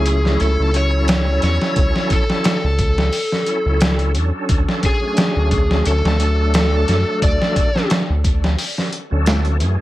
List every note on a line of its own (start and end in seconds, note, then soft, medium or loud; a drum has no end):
0.00 0.37 C#2 medium
0.00 0.70 F#3 medium
0.00 0.72 A3 loud
0.00 0.70 C#4 medium
0.00 0.71 E4 medium
0.00 0.41 G#4 medium
0.06 closed hi-hat medium
0.25 snare soft
0.40 0.57 C#2 loud
0.40 0.76 A4 loud
0.40 closed hi-hat medium
0.59 1.40 C#2 medium
0.73 2.24 F#3 medium
0.73 2.25 C#4 medium
0.73 2.26 E4 medium
0.73 1.43 C#5 loud
0.73 closed hi-hat medium
0.78 2.26 A4 loud
1.08 snare loud
1.08 closed hi-hat medium
1.42 1.59 E2 medium
1.42 2.13 C#5 loud
1.42 snare soft
1.42 closed hi-hat medium
1.62 snare soft
1.76 1.93 C#2 loud
1.76 kick loud
1.76 closed hi-hat medium
1.96 snare soft
2.10 2.45 A4 medium
2.10 kick loud
2.10 closed hi-hat medium
2.29 2.57 F#3 medium
2.29 2.58 C#4 medium
2.29 2.58 E4 medium
2.29 2.59 A4 medium
2.29 snare soft
2.44 4.12 A4 medium
2.44 snare loud
2.44 closed hi-hat medium
2.64 3.10 C#2 medium
2.79 kick medium
2.79 closed hi-hat medium
2.98 snare soft
3.13 open hi-hat medium
3.32 snare soft
3.46 4.11 F#3 medium
3.46 4.12 C#4 medium
3.46 4.12 E4 medium
3.46 4.12 A4 medium
3.46 closed hi-hat medium
3.66 4.17 C#2 medium
3.81 snare loud
3.81 closed hi-hat medium
3.99 closed hi-hat soft
4.14 4.32 E2 medium
4.14 4.96 F#3 medium
4.14 4.97 C#4 medium
4.14 4.98 D4 medium
4.14 closed hi-hat medium
4.18 4.99 A4 medium
4.49 4.65 D2 loud
4.49 kick loud
4.49 closed hi-hat medium
4.69 snare soft
4.83 5.87 G#4 medium
4.83 kick medium
4.83 closed hi-hat medium
5.00 6.15 F#3 loud
5.00 6.16 C#4 medium
5.00 6.17 D4 medium
5.05 6.17 A3 medium
5.17 snare loud
5.17 closed hi-hat medium
5.36 5.83 D2 medium
5.51 kick medium
5.51 closed hi-hat medium
5.71 snare soft
5.85 6.02 D2 loud
5.85 6.54 A4 loud
5.85 closed hi-hat medium
6.05 6.85 D2 medium
6.05 snare medium
6.18 7.69 F#3 medium
6.18 7.70 A3 medium
6.18 7.71 D4 medium
6.18 closed hi-hat medium
6.23 7.72 A4 loud
6.54 7.18 A4 medium
6.54 snare loud
6.54 closed hi-hat loud
6.88 7.04 F#2 medium
6.88 snare soft
6.88 closed hi-hat medium
7.22 7.38 D2 loud
7.22 7.87 D5 loud
7.22 kick loud
7.22 closed hi-hat medium
7.42 snare soft
7.56 kick loud
7.56 closed hi-hat medium
7.74 8.03 F#3 medium
7.74 8.03 C#4 medium
7.74 8.04 D4 medium
7.74 8.04 A4 medium
7.74 snare soft
7.90 snare loud
7.90 closed hi-hat medium
8.10 8.56 D2 medium
8.24 kick medium
8.24 closed hi-hat medium
8.44 snare soft
8.59 open hi-hat medium
8.78 snare soft
8.93 closed hi-hat medium
9.10 9.63 D2 medium
9.10 9.56 F#3 medium
9.10 9.57 C#4 medium
9.10 9.57 D4 medium
9.10 9.58 A4 medium
9.26 snare loud
9.26 closed hi-hat medium
9.45 closed hi-hat soft
9.58 9.77 F#2 medium
9.58 9.81 E3 medium
9.58 9.81 A3 medium
9.58 9.81 C#4 medium
9.58 closed hi-hat medium
9.63 9.81 G#4 medium